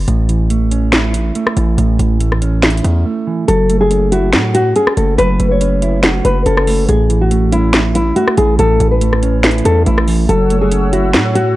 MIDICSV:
0, 0, Header, 1, 6, 480
1, 0, Start_track
1, 0, Key_signature, 3, "minor"
1, 0, Tempo, 425532
1, 88, Time_signature, 4, 2, 24, 8
1, 13044, End_track
2, 0, Start_track
2, 0, Title_t, "Analog synth pad"
2, 0, Program_c, 0, 89
2, 11605, Note_on_c, 0, 78, 73
2, 11606, Note_on_c, 0, 73, 79
2, 11606, Note_on_c, 0, 88, 83
2, 13044, Note_off_c, 0, 73, 0
2, 13044, Note_off_c, 0, 78, 0
2, 13044, Note_off_c, 0, 88, 0
2, 13044, End_track
3, 0, Start_track
3, 0, Title_t, "Nylon-string guitar"
3, 0, Program_c, 1, 24
3, 3925, Note_on_c, 1, 69, 96
3, 4272, Note_off_c, 1, 69, 0
3, 4294, Note_on_c, 1, 68, 86
3, 4626, Note_off_c, 1, 68, 0
3, 4646, Note_on_c, 1, 66, 80
3, 4859, Note_off_c, 1, 66, 0
3, 5128, Note_on_c, 1, 66, 103
3, 5339, Note_off_c, 1, 66, 0
3, 5369, Note_on_c, 1, 68, 86
3, 5580, Note_off_c, 1, 68, 0
3, 5609, Note_on_c, 1, 69, 73
3, 5820, Note_off_c, 1, 69, 0
3, 5845, Note_on_c, 1, 71, 119
3, 6192, Note_off_c, 1, 71, 0
3, 6219, Note_on_c, 1, 73, 77
3, 6775, Note_off_c, 1, 73, 0
3, 7048, Note_on_c, 1, 71, 89
3, 7259, Note_off_c, 1, 71, 0
3, 7286, Note_on_c, 1, 69, 87
3, 7738, Note_off_c, 1, 69, 0
3, 7768, Note_on_c, 1, 68, 97
3, 8113, Note_off_c, 1, 68, 0
3, 8137, Note_on_c, 1, 66, 73
3, 8468, Note_off_c, 1, 66, 0
3, 8487, Note_on_c, 1, 64, 83
3, 8699, Note_off_c, 1, 64, 0
3, 8970, Note_on_c, 1, 64, 92
3, 9180, Note_off_c, 1, 64, 0
3, 9205, Note_on_c, 1, 66, 92
3, 9418, Note_off_c, 1, 66, 0
3, 9449, Note_on_c, 1, 68, 83
3, 9660, Note_off_c, 1, 68, 0
3, 9690, Note_on_c, 1, 69, 105
3, 10034, Note_off_c, 1, 69, 0
3, 10051, Note_on_c, 1, 71, 78
3, 10610, Note_off_c, 1, 71, 0
3, 10888, Note_on_c, 1, 69, 80
3, 11100, Note_off_c, 1, 69, 0
3, 11128, Note_on_c, 1, 64, 84
3, 11579, Note_off_c, 1, 64, 0
3, 11607, Note_on_c, 1, 69, 99
3, 11952, Note_off_c, 1, 69, 0
3, 11973, Note_on_c, 1, 68, 88
3, 12306, Note_off_c, 1, 68, 0
3, 12325, Note_on_c, 1, 66, 78
3, 12538, Note_off_c, 1, 66, 0
3, 12806, Note_on_c, 1, 66, 105
3, 13019, Note_off_c, 1, 66, 0
3, 13044, End_track
4, 0, Start_track
4, 0, Title_t, "Clean electric guitar"
4, 0, Program_c, 2, 27
4, 88, Note_on_c, 2, 45, 90
4, 327, Note_on_c, 2, 52, 70
4, 570, Note_on_c, 2, 57, 81
4, 806, Note_on_c, 2, 61, 93
4, 1047, Note_on_c, 2, 64, 87
4, 1288, Note_off_c, 2, 45, 0
4, 1515, Note_off_c, 2, 57, 0
4, 1528, Note_off_c, 2, 52, 0
4, 1529, Note_on_c, 2, 57, 88
4, 1769, Note_on_c, 2, 52, 80
4, 2007, Note_off_c, 2, 61, 0
4, 2008, Note_on_c, 2, 45, 101
4, 2234, Note_off_c, 2, 52, 0
4, 2247, Note_off_c, 2, 64, 0
4, 2248, Note_on_c, 2, 52, 76
4, 2474, Note_off_c, 2, 57, 0
4, 2488, Note_on_c, 2, 57, 75
4, 2728, Note_on_c, 2, 61, 104
4, 2969, Note_on_c, 2, 64, 85
4, 3208, Note_off_c, 2, 45, 0
4, 3434, Note_off_c, 2, 57, 0
4, 3447, Note_on_c, 2, 57, 90
4, 3448, Note_off_c, 2, 52, 0
4, 3690, Note_on_c, 2, 52, 84
4, 3921, Note_off_c, 2, 52, 0
4, 3926, Note_on_c, 2, 54, 97
4, 3927, Note_off_c, 2, 57, 0
4, 3928, Note_off_c, 2, 61, 0
4, 3929, Note_off_c, 2, 64, 0
4, 4171, Note_on_c, 2, 57, 80
4, 4407, Note_on_c, 2, 61, 73
4, 4650, Note_on_c, 2, 64, 102
4, 4884, Note_off_c, 2, 64, 0
4, 4889, Note_on_c, 2, 66, 88
4, 5127, Note_off_c, 2, 54, 0
4, 5355, Note_off_c, 2, 61, 0
4, 5368, Note_on_c, 2, 61, 90
4, 5369, Note_off_c, 2, 57, 0
4, 5609, Note_on_c, 2, 57, 73
4, 5849, Note_on_c, 2, 54, 92
4, 6075, Note_off_c, 2, 57, 0
4, 6088, Note_off_c, 2, 66, 0
4, 6088, Note_on_c, 2, 57, 77
4, 6314, Note_off_c, 2, 61, 0
4, 6328, Note_on_c, 2, 61, 87
4, 6568, Note_on_c, 2, 64, 103
4, 6804, Note_off_c, 2, 64, 0
4, 6809, Note_on_c, 2, 66, 86
4, 7048, Note_off_c, 2, 54, 0
4, 7274, Note_off_c, 2, 61, 0
4, 7288, Note_off_c, 2, 57, 0
4, 7288, Note_on_c, 2, 61, 89
4, 7525, Note_on_c, 2, 57, 82
4, 7766, Note_on_c, 2, 45, 91
4, 7767, Note_off_c, 2, 57, 0
4, 7768, Note_off_c, 2, 61, 0
4, 7768, Note_off_c, 2, 66, 0
4, 8007, Note_on_c, 2, 52, 74
4, 8249, Note_on_c, 2, 57, 80
4, 8487, Note_on_c, 2, 61, 96
4, 8726, Note_on_c, 2, 64, 89
4, 8967, Note_off_c, 2, 45, 0
4, 9195, Note_off_c, 2, 57, 0
4, 9207, Note_off_c, 2, 52, 0
4, 9208, Note_on_c, 2, 57, 93
4, 9448, Note_on_c, 2, 52, 80
4, 9687, Note_off_c, 2, 61, 0
4, 9688, Note_on_c, 2, 45, 99
4, 9913, Note_off_c, 2, 52, 0
4, 9927, Note_off_c, 2, 64, 0
4, 9927, Note_on_c, 2, 52, 78
4, 10153, Note_off_c, 2, 57, 0
4, 10166, Note_on_c, 2, 57, 76
4, 10407, Note_on_c, 2, 61, 107
4, 10648, Note_on_c, 2, 64, 87
4, 10888, Note_off_c, 2, 45, 0
4, 11113, Note_off_c, 2, 57, 0
4, 11126, Note_on_c, 2, 57, 93
4, 11127, Note_off_c, 2, 52, 0
4, 11367, Note_on_c, 2, 52, 84
4, 11599, Note_off_c, 2, 52, 0
4, 11604, Note_on_c, 2, 54, 96
4, 11607, Note_off_c, 2, 57, 0
4, 11607, Note_off_c, 2, 61, 0
4, 11608, Note_off_c, 2, 64, 0
4, 11851, Note_on_c, 2, 57, 77
4, 12088, Note_on_c, 2, 61, 75
4, 12328, Note_on_c, 2, 64, 101
4, 12564, Note_off_c, 2, 64, 0
4, 12568, Note_on_c, 2, 66, 89
4, 12806, Note_off_c, 2, 54, 0
4, 13034, Note_off_c, 2, 61, 0
4, 13044, Note_off_c, 2, 57, 0
4, 13044, Note_off_c, 2, 66, 0
4, 13044, End_track
5, 0, Start_track
5, 0, Title_t, "808-style bass"
5, 0, Program_c, 3, 38
5, 87, Note_on_c, 3, 33, 117
5, 1483, Note_off_c, 3, 33, 0
5, 1768, Note_on_c, 3, 33, 105
5, 1998, Note_off_c, 3, 33, 0
5, 2008, Note_on_c, 3, 33, 115
5, 2238, Note_off_c, 3, 33, 0
5, 2248, Note_on_c, 3, 33, 98
5, 3170, Note_off_c, 3, 33, 0
5, 3208, Note_on_c, 3, 40, 102
5, 3438, Note_off_c, 3, 40, 0
5, 3929, Note_on_c, 3, 30, 114
5, 4889, Note_on_c, 3, 45, 99
5, 4906, Note_off_c, 3, 30, 0
5, 5344, Note_off_c, 3, 45, 0
5, 5608, Note_on_c, 3, 30, 106
5, 5839, Note_off_c, 3, 30, 0
5, 5849, Note_on_c, 3, 30, 116
5, 6079, Note_off_c, 3, 30, 0
5, 6088, Note_on_c, 3, 30, 102
5, 7010, Note_off_c, 3, 30, 0
5, 7048, Note_on_c, 3, 30, 106
5, 7278, Note_off_c, 3, 30, 0
5, 7288, Note_on_c, 3, 30, 112
5, 7749, Note_off_c, 3, 30, 0
5, 7769, Note_on_c, 3, 33, 115
5, 9163, Note_off_c, 3, 33, 0
5, 9448, Note_on_c, 3, 33, 111
5, 9679, Note_off_c, 3, 33, 0
5, 9688, Note_on_c, 3, 33, 116
5, 9919, Note_off_c, 3, 33, 0
5, 9928, Note_on_c, 3, 33, 100
5, 10850, Note_off_c, 3, 33, 0
5, 10888, Note_on_c, 3, 40, 107
5, 11118, Note_off_c, 3, 40, 0
5, 11127, Note_on_c, 3, 33, 109
5, 11588, Note_off_c, 3, 33, 0
5, 11608, Note_on_c, 3, 30, 108
5, 12568, Note_on_c, 3, 45, 101
5, 12585, Note_off_c, 3, 30, 0
5, 13024, Note_off_c, 3, 45, 0
5, 13044, End_track
6, 0, Start_track
6, 0, Title_t, "Drums"
6, 87, Note_on_c, 9, 42, 81
6, 200, Note_off_c, 9, 42, 0
6, 327, Note_on_c, 9, 42, 74
6, 440, Note_off_c, 9, 42, 0
6, 566, Note_on_c, 9, 42, 89
6, 679, Note_off_c, 9, 42, 0
6, 806, Note_on_c, 9, 42, 84
6, 918, Note_off_c, 9, 42, 0
6, 1039, Note_on_c, 9, 26, 86
6, 1046, Note_on_c, 9, 38, 116
6, 1047, Note_on_c, 9, 42, 73
6, 1152, Note_off_c, 9, 26, 0
6, 1159, Note_off_c, 9, 38, 0
6, 1160, Note_off_c, 9, 42, 0
6, 1287, Note_on_c, 9, 42, 99
6, 1400, Note_off_c, 9, 42, 0
6, 1525, Note_on_c, 9, 42, 70
6, 1638, Note_off_c, 9, 42, 0
6, 1655, Note_on_c, 9, 37, 98
6, 1767, Note_off_c, 9, 37, 0
6, 1767, Note_on_c, 9, 42, 84
6, 1880, Note_off_c, 9, 42, 0
6, 2009, Note_on_c, 9, 42, 82
6, 2122, Note_off_c, 9, 42, 0
6, 2249, Note_on_c, 9, 42, 74
6, 2362, Note_off_c, 9, 42, 0
6, 2487, Note_on_c, 9, 42, 91
6, 2600, Note_off_c, 9, 42, 0
6, 2616, Note_on_c, 9, 37, 72
6, 2728, Note_on_c, 9, 42, 82
6, 2729, Note_off_c, 9, 37, 0
6, 2841, Note_off_c, 9, 42, 0
6, 2960, Note_on_c, 9, 26, 88
6, 2968, Note_on_c, 9, 38, 112
6, 2968, Note_on_c, 9, 42, 65
6, 3049, Note_off_c, 9, 42, 0
6, 3049, Note_on_c, 9, 42, 65
6, 3073, Note_off_c, 9, 26, 0
6, 3080, Note_off_c, 9, 38, 0
6, 3129, Note_off_c, 9, 42, 0
6, 3129, Note_on_c, 9, 42, 62
6, 3209, Note_off_c, 9, 42, 0
6, 3209, Note_on_c, 9, 42, 95
6, 3321, Note_off_c, 9, 42, 0
6, 3929, Note_on_c, 9, 42, 84
6, 4042, Note_off_c, 9, 42, 0
6, 4169, Note_on_c, 9, 42, 77
6, 4282, Note_off_c, 9, 42, 0
6, 4407, Note_on_c, 9, 42, 89
6, 4520, Note_off_c, 9, 42, 0
6, 4648, Note_on_c, 9, 42, 84
6, 4761, Note_off_c, 9, 42, 0
6, 4880, Note_on_c, 9, 26, 91
6, 4887, Note_on_c, 9, 38, 114
6, 4889, Note_on_c, 9, 42, 75
6, 4993, Note_off_c, 9, 26, 0
6, 5000, Note_off_c, 9, 38, 0
6, 5001, Note_off_c, 9, 42, 0
6, 5128, Note_on_c, 9, 42, 101
6, 5241, Note_off_c, 9, 42, 0
6, 5365, Note_on_c, 9, 42, 71
6, 5478, Note_off_c, 9, 42, 0
6, 5494, Note_on_c, 9, 37, 104
6, 5607, Note_off_c, 9, 37, 0
6, 5607, Note_on_c, 9, 42, 80
6, 5720, Note_off_c, 9, 42, 0
6, 5848, Note_on_c, 9, 42, 88
6, 5961, Note_off_c, 9, 42, 0
6, 6087, Note_on_c, 9, 42, 77
6, 6200, Note_off_c, 9, 42, 0
6, 6327, Note_on_c, 9, 42, 91
6, 6440, Note_off_c, 9, 42, 0
6, 6567, Note_on_c, 9, 42, 86
6, 6680, Note_off_c, 9, 42, 0
6, 6800, Note_on_c, 9, 26, 92
6, 6807, Note_on_c, 9, 38, 116
6, 6808, Note_on_c, 9, 42, 72
6, 6912, Note_off_c, 9, 26, 0
6, 6920, Note_off_c, 9, 38, 0
6, 6921, Note_off_c, 9, 42, 0
6, 7048, Note_on_c, 9, 42, 100
6, 7161, Note_off_c, 9, 42, 0
6, 7286, Note_on_c, 9, 42, 71
6, 7398, Note_off_c, 9, 42, 0
6, 7415, Note_on_c, 9, 37, 101
6, 7527, Note_on_c, 9, 46, 91
6, 7528, Note_off_c, 9, 37, 0
6, 7640, Note_off_c, 9, 46, 0
6, 7768, Note_on_c, 9, 42, 84
6, 7880, Note_off_c, 9, 42, 0
6, 8007, Note_on_c, 9, 42, 79
6, 8120, Note_off_c, 9, 42, 0
6, 8246, Note_on_c, 9, 42, 92
6, 8359, Note_off_c, 9, 42, 0
6, 8488, Note_on_c, 9, 42, 86
6, 8600, Note_off_c, 9, 42, 0
6, 8720, Note_on_c, 9, 26, 90
6, 8727, Note_on_c, 9, 38, 109
6, 8729, Note_on_c, 9, 42, 74
6, 8833, Note_off_c, 9, 26, 0
6, 8840, Note_off_c, 9, 38, 0
6, 8841, Note_off_c, 9, 42, 0
6, 8969, Note_on_c, 9, 42, 98
6, 9082, Note_off_c, 9, 42, 0
6, 9206, Note_on_c, 9, 42, 74
6, 9319, Note_off_c, 9, 42, 0
6, 9335, Note_on_c, 9, 37, 101
6, 9446, Note_on_c, 9, 42, 82
6, 9448, Note_off_c, 9, 37, 0
6, 9559, Note_off_c, 9, 42, 0
6, 9688, Note_on_c, 9, 42, 84
6, 9801, Note_off_c, 9, 42, 0
6, 9929, Note_on_c, 9, 42, 78
6, 10041, Note_off_c, 9, 42, 0
6, 10167, Note_on_c, 9, 42, 95
6, 10280, Note_off_c, 9, 42, 0
6, 10296, Note_on_c, 9, 37, 72
6, 10408, Note_on_c, 9, 42, 88
6, 10409, Note_off_c, 9, 37, 0
6, 10521, Note_off_c, 9, 42, 0
6, 10640, Note_on_c, 9, 26, 93
6, 10647, Note_on_c, 9, 38, 116
6, 10647, Note_on_c, 9, 42, 62
6, 10728, Note_off_c, 9, 42, 0
6, 10728, Note_on_c, 9, 42, 64
6, 10752, Note_off_c, 9, 26, 0
6, 10760, Note_off_c, 9, 38, 0
6, 10808, Note_off_c, 9, 42, 0
6, 10808, Note_on_c, 9, 42, 61
6, 10888, Note_off_c, 9, 42, 0
6, 10888, Note_on_c, 9, 42, 100
6, 11001, Note_off_c, 9, 42, 0
6, 11126, Note_on_c, 9, 42, 72
6, 11239, Note_off_c, 9, 42, 0
6, 11255, Note_on_c, 9, 37, 100
6, 11366, Note_on_c, 9, 46, 89
6, 11367, Note_off_c, 9, 37, 0
6, 11479, Note_off_c, 9, 46, 0
6, 11608, Note_on_c, 9, 42, 81
6, 11721, Note_off_c, 9, 42, 0
6, 11848, Note_on_c, 9, 42, 74
6, 11960, Note_off_c, 9, 42, 0
6, 12087, Note_on_c, 9, 42, 96
6, 12200, Note_off_c, 9, 42, 0
6, 12328, Note_on_c, 9, 42, 85
6, 12441, Note_off_c, 9, 42, 0
6, 12560, Note_on_c, 9, 26, 91
6, 12568, Note_on_c, 9, 38, 113
6, 12569, Note_on_c, 9, 42, 76
6, 12673, Note_off_c, 9, 26, 0
6, 12680, Note_off_c, 9, 38, 0
6, 12682, Note_off_c, 9, 42, 0
6, 12808, Note_on_c, 9, 42, 100
6, 12921, Note_off_c, 9, 42, 0
6, 13044, End_track
0, 0, End_of_file